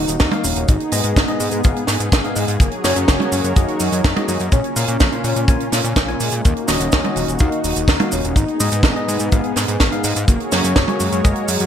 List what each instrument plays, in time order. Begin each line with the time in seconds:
Already playing: analog synth pad A#3 D#4 F#4, analog synth lead D#4
0.08 analog synth bass D#1, closed hi-hat, cabasa
0.20 analog synth bass D#2, kick, snare, closed hi-hat, cabasa
0.31 tine electric piano D#3 A#3 D#4 F#4 F5, closed hi-hat, high tom
0.44 analog synth bass D#1, analog synth lead C#4, open hi-hat, cabasa
0.56 analog synth bass D#1, closed hi-hat, cabasa
0.68 analog synth bass G#1, analog synth pad B3 G#4, analog synth lead D#4, kick, closed hi-hat, cabasa
0.80 closed hi-hat
0.92 analog synth bass G#2, tine electric piano G#2 B3 D#4 G#4 D#5, analog synth lead B3, open hi-hat, cabasa
1.04 analog synth bass G#2, closed hi-hat, cabasa
1.16 analog synth bass G#1, kick, snare, closed hi-hat, cabasa
1.28 tine electric piano G#2 B3 D#4 G#4 D#5, closed hi-hat
1.40 analog synth bass G#2, open hi-hat, cabasa
1.51 analog synth bass G#2, closed hi-hat, cabasa
1.64 analog synth bass G#1, tine electric piano G#2 B3 D#4 G#4 F5, kick, closed hi-hat, cabasa
1.76 closed hi-hat
1.87 analog synth bass G#2, snare, open hi-hat, cabasa
2.00 analog synth bass G#2, closed hi-hat, cabasa
2.12 analog synth bass G#1, kick, snare, closed hi-hat, cabasa
2.24 tine electric piano G#2 B3 D#4 G#4 F5, closed hi-hat
2.36 analog synth bass G#2, analog synth lead G#3, open hi-hat, cabasa
2.48 analog synth bass G#2, closed hi-hat, cabasa
2.60 analog synth bass F#1, analog synth pad F#3 F#4 A#4 C#5, analog synth lead A#3, kick, closed hi-hat, cabasa
2.72 closed hi-hat
2.84 analog synth bass F#2, tine electric piano A#3 F#4 G#4 C#5, analog synth lead C#4, snare, open hi-hat, cabasa
2.96 analog synth bass F#2, closed hi-hat, cabasa
3.08 analog synth bass F#1, kick, snare, closed hi-hat, cabasa
3.20 tine electric piano A#3 F#4 G#4 C#5, closed hi-hat, high tom
3.32 analog synth bass F#2, open hi-hat, cabasa
3.44 analog synth bass F#2, closed hi-hat, cabasa
3.56 analog synth bass F#1, tine electric piano A#3 F#4 G#4 D#5, analog synth lead D#4, kick, closed hi-hat, cabasa
3.68 closed hi-hat
3.80 analog synth bass F#2, open hi-hat, cabasa
3.92 analog synth bass F#2, closed hi-hat, cabasa
4.04 analog synth bass F#1, kick, snare, closed hi-hat, cabasa
4.16 tine electric piano A#3 F#4 G#4 D#5, closed hi-hat, high tom
4.28 analog synth bass F#2, analog synth lead D#4, open hi-hat, cabasa
4.40 analog synth bass F#2, closed hi-hat, cabasa
4.52 analog synth bass A#1, analog synth pad A#3 C#4 F4, analog synth lead C#4, kick, closed hi-hat, cabasa
4.64 closed hi-hat
4.76 analog synth bass A#2, tine electric piano A#2 C#4 F4 A#4 F5, analog synth lead C#4, open hi-hat, cabasa
4.88 analog synth bass A#2, closed hi-hat, cabasa
5.00 analog synth bass A#1, kick, snare, closed hi-hat, cabasa
5.12 tine electric piano A#2 C#4 F4 A#4 F5, closed hi-hat
5.24 analog synth bass A#2, open hi-hat, cabasa
5.36 analog synth bass A#2, closed hi-hat, cabasa
5.48 analog synth bass A#1, tine electric piano A#2 C#4 F4 A#4 G#5, kick, closed hi-hat, cabasa
5.60 closed hi-hat
5.72 analog synth bass A#2, snare, open hi-hat, cabasa
5.84 analog synth bass A#2, closed hi-hat, cabasa
5.96 analog synth bass A#1, kick, snare, closed hi-hat, cabasa
6.08 tine electric piano A#2 C#4 F4 A#4 G#5, closed hi-hat
6.20 analog synth bass A#2, analog synth lead G#3, open hi-hat, cabasa
6.32 analog synth bass A#2, closed hi-hat, cabasa
6.44 analog synth bass D#2, analog synth lead A#3, analog synth pad D#4 F#4, kick, closed hi-hat, cabasa
6.57 closed hi-hat
6.68 analog synth bass D#1, tine electric piano D#3 A#3 D#4 F#4 D#5, analog synth lead C#4, snare, open hi-hat, cabasa
6.80 analog synth bass D#1, closed hi-hat, cabasa
6.92 analog synth bass D#2, kick, snare, closed hi-hat, cabasa
7.04 tine electric piano D#3 A#3 D#4 F#4 D#5, closed hi-hat, high tom
7.16 analog synth bass D#1, open hi-hat, cabasa
7.28 analog synth bass D#1, closed hi-hat, cabasa
7.39 analog synth bass D#2, tine electric piano D#3 A#3 D#4 F#4 F5, analog synth lead D#4, kick, closed hi-hat, cabasa
7.52 closed hi-hat
7.64 analog synth bass D#1, open hi-hat, cabasa
7.76 analog synth bass D#1, closed hi-hat, cabasa
7.88 analog synth bass D#2, kick, snare, closed hi-hat, cabasa
8.00 tine electric piano D#3 A#3 D#4 F#4 F5, closed hi-hat, high tom
8.12 analog synth bass D#1, analog synth lead C#4, open hi-hat, cabasa
8.24 analog synth bass D#1, closed hi-hat, cabasa
8.36 analog synth bass G#1, analog synth pad B3 G#4, analog synth lead D#4, kick, closed hi-hat, cabasa
8.48 closed hi-hat
8.60 analog synth bass G#2, tine electric piano G#2 B3 D#4 G#4 D#5, analog synth lead B3, open hi-hat, cabasa
8.72 analog synth bass G#2, closed hi-hat, cabasa
8.83 analog synth bass G#1, kick, snare, closed hi-hat, cabasa
8.96 tine electric piano G#2 B3 D#4 G#4 D#5, closed hi-hat
9.08 analog synth bass G#2, open hi-hat, cabasa
9.19 analog synth bass G#2, closed hi-hat, cabasa
9.32 analog synth bass G#1, tine electric piano G#2 B3 D#4 G#4 F5, kick, closed hi-hat, cabasa
9.44 closed hi-hat
9.56 analog synth bass G#2, snare, open hi-hat, cabasa
9.68 analog synth bass G#2, closed hi-hat, cabasa
9.80 analog synth bass G#1, kick, snare, closed hi-hat, cabasa
9.92 tine electric piano G#2 B3 D#4 G#4 F5, closed hi-hat
10.04 analog synth bass G#2, analog synth lead G#3, open hi-hat, cabasa
10.16 analog synth bass G#2, closed hi-hat, cabasa
10.28 analog synth bass F#1, analog synth pad F#3 F#4 G#4 A#4 C#5, analog synth lead A#3, kick, closed hi-hat, cabasa
10.40 closed hi-hat
10.52 analog synth bass F#2, tine electric piano A#3 F#4 G#4 C#5, analog synth lead C#4, snare, open hi-hat, cabasa
10.64 analog synth bass F#2, closed hi-hat, cabasa
10.76 analog synth bass F#1, kick, snare, closed hi-hat, cabasa
10.88 tine electric piano A#3 F#4 G#4 C#5, closed hi-hat, high tom
11.00 analog synth bass F#2, analog synth lead G#3, open hi-hat, cabasa
11.12 analog synth bass F#2, closed hi-hat, cabasa
11.24 analog synth bass F#1, tine electric piano A#3 F#4 G#4 D#5, kick, closed hi-hat, cabasa
11.36 closed hi-hat
11.48 analog synth bass F#2, open hi-hat, cabasa
11.60 analog synth bass F#2, closed hi-hat, cabasa